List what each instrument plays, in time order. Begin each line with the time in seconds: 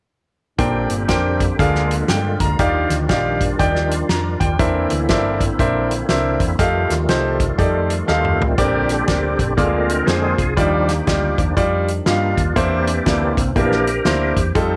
0.58 fingered electric bass A#1, grand piano A#2 D4 A#4 C5 G5, tonewheel organ D3 A#3 C4 G4, french horn section G3 A#3 C4 D4, kick, closed hi-hat
0.90 fingered electric bass G1, closed hi-hat
1.08 fingered electric bass F2, grand piano D4 A#4 C5 G5, kick, snare, closed hi-hat
1.40 kick, closed hi-hat
1.59 fingered electric bass D2, grand piano D3 D4 G#4 A#4 F5, french horn section F3 G#3 D4, tonewheel organ G#3 F4, kick, closed hi-hat
1.75 snare
1.91 closed hi-hat
2.08 fingered electric bass G2, grand piano G5, snare, closed hi-hat
2.40 fingered electric bass D2, grand piano A#5, kick, closed hi-hat
2.59 fingered electric bass D#2, grand piano D#3 D#4 G4 D5 F5, french horn section D#3 G3, tonewheel organ D#3 G3 D4, kick, closed hi-hat
2.90 fingered electric bass D2, snare, closed hi-hat
3.09 fingered electric bass A#1, grand piano D#4 G4 D5 F5, kick, snare, closed hi-hat
3.41 kick, closed hi-hat
3.59 fingered electric bass D#2, grand piano D#4 G4 D5 G5, kick, closed hi-hat
3.75 snare
3.91 closed hi-hat
4.09 fingered electric bass F2, grand piano A#5, snare, closed hi-hat
4.40 fingered electric bass D#2, grand piano G5, kick, closed hi-hat
4.59 fingered electric bass E2, tonewheel organ D3 A#3 C4 E4, grand piano E3 D4 A#4 C5 E5, french horn section E3 A#3 C4, kick, closed hi-hat
4.90 fingered electric bass D2, closed hi-hat
5.09 fingered electric bass G1, grand piano D4 A#4 C5 E5, kick, snare, closed hi-hat
5.41 kick, closed hi-hat
5.59 fingered electric bass A#1, grand piano D4 A#4 C5 E5, kick, closed hi-hat
5.91 closed hi-hat
6.09 fingered electric bass C2, grand piano D4 A#4 C5 E5, snare, closed hi-hat
6.40 fingered electric bass E2, kick, closed hi-hat
6.59 fingered electric bass F2, tonewheel organ D#3 G3 A3 F4, french horn section F3 G3 A3 D#4, grand piano D#4 G4 A4 F5, kick, closed hi-hat
6.90 fingered electric bass D#2, snare, closed hi-hat
7.08 fingered electric bass C2, grand piano D#4 G4 A4 C5, snare, closed hi-hat
7.40 kick, closed hi-hat
7.58 fingered electric bass F2, grand piano D#4 G4 A4 D5, kick, closed hi-hat
7.90 closed hi-hat
8.07 fingered electric bass D#2, tonewheel organ A3 C4 F4, grand piano D#4 G4 A4 F5, snare
8.25 mid tom
8.39 fingered electric bass A1, floor tom
8.57 fingered electric bass A#1, grand piano A#2 C4 G4 A#4 D5, tonewheel organ D3 G3 C4 D4 G4, french horn section G3 A#3 C4 D4, kick, closed hi-hat
8.89 snare, closed hi-hat
9.07 fingered electric bass D2, grand piano C4 G4 A#4 D5, kick, snare, closed hi-hat
9.39 fingered electric bass A#1, kick, closed hi-hat
9.57 fingered electric bass D2, tonewheel organ D3 G#3 C4 F4 A#4, grand piano D3 A#3 F4 G#4 D5, french horn section F3 G#3, kick, closed hi-hat
9.89 closed hi-hat
10.06 fingered electric bass F2, grand piano A#3 F4 G#4 C5, tonewheel organ F4 G#4, snare, closed hi-hat
10.38 fingered electric bass C2, kick, closed hi-hat
10.56 fingered electric bass D#2, french horn section D#3 F3 G3, grand piano D#3 G3 D#4 F4 D5, tonewheel organ F3 G3 A#3 D4 G4, kick, closed hi-hat
10.89 snare, closed hi-hat
11.07 fingered electric bass D2, grand piano G3 D#4 F4 D5, kick, snare, closed hi-hat
11.38 fingered electric bass D#2, tonewheel organ F3 G3 D4, kick, closed hi-hat
11.57 fingered electric bass F2, grand piano G3 D#4 F4 D5, kick, closed hi-hat
11.88 closed hi-hat
12.06 fingered electric bass G2, grand piano G3 D#4 F4 F5, tonewheel organ A#3 D4 F4, snare, closed hi-hat
12.38 fingered electric bass D#2, kick, closed hi-hat
12.56 fingered electric bass E2, tonewheel organ E3 A#3 C4 D4 G4, grand piano E3 A#3 D4 E4 C5, french horn section E3 A#3 C4, kick, closed hi-hat
12.87 closed hi-hat
13.06 fingered electric bass D2, grand piano A#3 D4 E4 D5, kick, snare, closed hi-hat
13.37 fingered electric bass C2, kick, closed hi-hat
13.56 fingered electric bass A#1, tonewheel organ E3 A#3 D4 G4 A#4, grand piano A#3 D4 E4 G4, kick, closed hi-hat
13.71 snare
13.87 closed hi-hat
14.05 fingered electric bass D2, grand piano A#3 D4 E4 C5, snare, closed hi-hat
14.37 fingered electric bass E2, kick, closed hi-hat
14.55 fingered electric bass F2, french horn section F3 G3 A3 D#4, grand piano G3 D#4 F4 A4, tonewheel organ C4 D#4 A4, kick, closed hi-hat